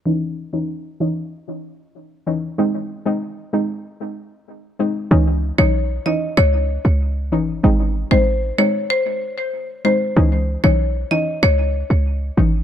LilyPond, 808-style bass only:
\new Staff \with { instrumentName = "808-style bass" } { \clef bass \time 4/4 \key cis \minor \tempo 4 = 95 r1 | r1 | cis,8. b,,8. r8 cis,8. cis,8. gis,,8 | gis,,8. a,,8. r2 r8 |
cis,8. b,,8. r8 cis,8. cis,8. gis,,8 | }